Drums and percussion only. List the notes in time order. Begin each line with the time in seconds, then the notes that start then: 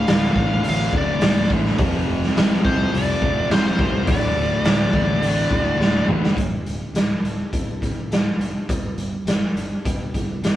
0.07 snare, open hi-hat
0.36 kick
0.64 open hi-hat
0.93 kick
1.21 snare, open hi-hat
1.50 kick
1.65 snare
1.78 kick, open hi-hat
2.23 snare
2.37 snare, open hi-hat
2.65 kick
2.94 open hi-hat
3.22 kick
3.50 snare, open hi-hat
3.79 kick
4.07 kick, open hi-hat
4.65 snare, open hi-hat
4.93 kick
5.22 open hi-hat
5.51 kick
5.81 snare
6.08 mid tom
6.25 snare
6.37 kick, closed hi-hat
6.66 closed hi-hat
6.95 snare, closed hi-hat
7.25 closed hi-hat
7.53 kick, closed hi-hat
7.82 kick, closed hi-hat
8.12 snare, closed hi-hat
8.41 closed hi-hat
8.69 kick, closed hi-hat
8.98 closed hi-hat
9.27 snare, closed hi-hat
9.57 closed hi-hat
9.85 kick, closed hi-hat
10.14 kick, closed hi-hat
10.44 snare, closed hi-hat